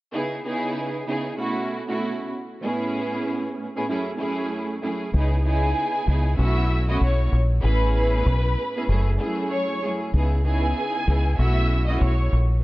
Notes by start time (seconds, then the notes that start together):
0.14 C#3 B3 D#4 E4 G#4
0.45 C#3 B3 D#4 E4 G#4
1.08 C#3 B3 D#4 E4 G#4
1.37 B2 A3 C#4 E4 F#4
1.88 B2 A3 C#4 E4 F#4
2.63 A2 B3 C#4 E4 G#4
3.76 A2 B3 C#4 E4 G#4
3.89 F#2 A3 C#4 E4 G#4
4.18 F#2 A3 C#4 E4 G#4
4.83 F#2 A3 C#4 E4 G#4
5.14 C#2 C#3 B3 D#4 E4 G#4
5.45 C#3 B3 D#4 E4 G#4 G#5
6.08 C#2 C#3 B3 D#4 E4 G#4
6.37 B1 B2 A3 C#4 E4 F#4 E5 E6
6.88 B2 A3 C#4 E4 F#4 D#5 D#6
7.01 B1 C#5 C#6
7.32 A#1
7.63 A1 A2 B3 C#4 E4 G#4 B4 B5
7.95 B4 B5
8.26 B1
8.77 A2 B3 C#4 E4 G#4
8.89 F#1 F#2 A3 C#4 E4 G#4
9.18 F#2 A3 C#4 E4 G#4
9.51 C#5 C#6
9.83 F#2 A3 C#4 E4 G#4
10.14 C#2 C#3 B3 D#4 E4 G#4
10.45 C#3 B3 D#4 E4 G#4 G#5
11.08 C#2 C#3 B3 D#4 E4 G#4
11.37 B1 B2 A3 C#4 E4 F#4 E5 E6
11.87 B2 A3 C#4 E4 F#4 D#5 D#6
12.01 B1 C#5 C#6
12.33 A#1